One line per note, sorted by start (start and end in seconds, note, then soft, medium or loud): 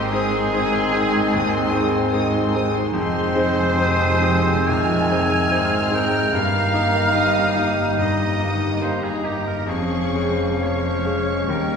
0.00 2.92 G#1 medium
0.00 0.11 G#2 medium
0.00 2.92 G#2 medium
0.00 2.78 D#3 medium
0.00 2.78 C4 medium
0.00 2.80 C4 medium
0.00 0.15 D#4 medium
0.00 2.78 D#4 medium
0.00 0.13 G4 medium
0.00 0.15 G4 medium
0.00 0.15 C5 medium
0.00 2.92 G#5 medium
0.00 0.14 C6 medium
0.12 0.50 G#3 medium
0.12 0.35 C4 medium
0.12 0.50 D#4 medium
0.12 2.13 G#4 medium
0.12 2.15 G#4 medium
0.12 0.35 G#4 medium
0.12 0.51 C5 medium
0.12 0.34 D#6 medium
0.34 0.55 D#4 medium
0.34 0.55 C5 medium
0.34 0.55 C6 medium
0.53 0.90 G#3 medium
0.53 0.74 C4 medium
0.53 0.90 D#4 medium
0.53 0.74 G#4 soft
0.53 0.90 C5 medium
0.53 0.73 D#6 medium
0.74 0.95 D#4 medium
0.74 0.95 C5 medium
0.74 0.94 C6 soft
0.92 1.29 G#3 medium
0.92 1.14 C4 medium
0.92 1.29 D#4 medium
0.92 1.14 G#4 medium
0.92 1.29 C5 medium
0.92 1.14 D#6 medium
1.14 1.34 D#4 medium
1.14 1.34 C5 medium
1.14 1.34 C6 medium
1.33 1.72 D#2 medium
1.33 1.52 C4 medium
1.33 1.52 G#4 medium
1.33 1.52 D#6 medium
1.51 1.74 D#4 medium
1.51 1.74 C5 medium
1.51 1.73 C6 medium
1.70 2.10 G#3 medium
1.70 1.94 C4 medium
1.70 2.10 D#4 medium
1.70 1.94 G#4 medium
1.70 2.10 C5 medium
1.70 1.92 D#6 medium
1.91 2.15 D#4 medium
1.91 2.15 C5 medium
1.91 2.13 C6 medium
2.11 2.51 G#3 medium
2.11 2.34 C4 medium
2.11 2.51 D#4 medium
2.11 2.51 C5 medium
2.11 2.32 D#6 medium
2.15 2.34 G#4 medium
2.31 2.55 D#4 soft
2.31 2.55 C5 medium
2.31 2.54 C6 medium
2.54 2.92 G#3 medium
2.54 2.76 C4 medium
2.54 2.91 D#4 soft
2.54 2.76 G#4 medium
2.54 2.92 C5 medium
2.54 2.75 D#6 medium
2.75 2.96 D#4 medium
2.75 2.96 C5 medium
2.75 2.94 C6 soft
2.93 5.49 F1 medium
2.93 3.34 F2 medium
2.93 5.49 F2 medium
2.93 6.30 D#3 medium
2.93 6.30 G#3 medium
2.93 3.74 G#3 medium
2.93 6.30 D#4 medium
2.93 3.75 G#4 medium
2.93 4.69 C5 loud
2.93 4.65 C5 medium
2.93 6.15 G#5 medium
2.93 3.74 C6 medium
2.97 6.31 C4 medium
3.35 3.74 G#3 medium
3.35 3.74 D#4 medium
3.35 3.74 C5 medium
3.77 4.19 G#3 medium
3.77 4.68 C4 medium
3.77 4.19 D#4 medium
3.77 4.70 G4 medium
3.77 4.19 C5 medium
3.77 4.69 D#6 medium
4.21 4.64 G#3 medium
4.21 4.64 D#4 medium
4.21 4.65 C5 medium
4.68 5.10 C2 medium
4.68 5.51 C4 medium
4.68 5.12 F4 medium
4.68 5.93 G#5 loud
4.68 5.94 G#5 medium
4.68 7.15 F6 medium
5.11 5.48 G#3 medium
5.11 5.48 D#4 soft
5.11 5.53 G#4 medium
5.11 5.49 C5 medium
5.51 6.35 G#1 medium
5.51 6.34 G#2 medium
5.51 5.89 G#3 medium
5.51 6.35 G#3 medium
5.51 5.89 D#4 medium
5.51 5.89 C5 medium
5.51 5.94 C5 medium
5.91 6.29 G#3 soft
5.91 6.29 D#4 soft
5.91 6.34 A#4 medium
5.91 6.29 C5 soft
5.91 6.37 G5 medium
5.95 6.35 G5 medium
6.33 9.64 G1 medium
6.33 6.73 G2 medium
6.33 9.65 G2 medium
6.33 9.35 D#3 medium
6.33 7.14 A#3 medium
6.33 9.53 A#3 medium
6.33 9.35 D#4 medium
6.33 9.53 D#4 medium
6.33 7.14 A#4 medium
6.33 7.99 F5 medium
6.33 7.99 F5 loud
6.37 9.36 A#5 medium
6.74 7.11 A#3 soft
6.74 7.11 D#4 medium
6.74 7.12 D#5 medium
7.14 7.52 A#3 soft
7.14 7.58 C4 medium
7.14 7.52 D#4 medium
7.14 7.99 G4 medium
7.14 7.53 D#5 soft
7.14 7.97 D#6 medium
7.56 7.95 A#3 soft
7.56 7.99 A#3 medium
7.56 7.95 D#4 soft
7.56 7.95 D#5 medium
7.98 8.39 G2 medium
7.98 8.82 A#3 medium
7.98 9.65 G4 medium
7.98 8.65 D#5 medium
7.98 8.81 D#5 medium
7.98 8.81 D#6 medium
8.40 8.78 A#3 soft
8.40 8.78 D#4 soft
8.40 8.78 D#5 medium
8.80 9.19 A#3 soft
8.80 9.20 D#4 soft
8.80 9.05 C5 medium
8.80 9.04 C5 medium
8.80 9.20 D#5 medium
8.80 9.68 A#5 medium
8.85 9.69 D#4 medium
9.03 9.26 G#4 medium
9.03 9.24 G#4 medium
9.24 9.64 A#3 soft
9.24 9.64 D#4 soft
9.24 9.46 G4 medium
9.24 9.64 D#5 soft
9.47 9.70 A#4 medium
9.47 9.69 A#4 medium
9.66 11.46 F1 medium
9.66 10.12 F2 medium
9.66 11.45 F2 medium
9.66 11.50 F3 medium
9.66 11.77 C#4 medium
9.66 10.14 C#4 medium
9.66 10.62 G#4 medium
9.66 10.31 G#4 medium
9.66 11.46 G#4 medium
9.66 11.51 F5 medium
9.66 10.60 C#6 medium
9.70 11.47 G#3 medium
9.70 11.77 C#4 medium
10.14 10.57 G#3 soft
10.14 10.61 C4 medium
10.14 10.57 G#4 soft
10.14 10.58 C#5 soft
10.61 11.02 G#3 soft
10.61 11.06 A#3 soft
10.61 11.01 G#4 soft
10.61 11.49 C#5 medium
10.61 11.02 C#5 soft
10.61 11.52 C#5 medium
10.61 11.77 C#6 medium
11.05 11.45 G#3 soft
11.05 11.50 G#3 soft
11.05 11.45 G#4 soft
11.05 11.45 C#5 soft
11.48 11.77 D#2 medium
11.48 11.77 D#2 soft
11.48 11.77 D#3 soft
11.48 11.77 D#3 medium
11.48 11.77 G3 soft
11.48 11.77 G4 soft
11.48 11.77 A#4 medium
11.48 11.77 G5 medium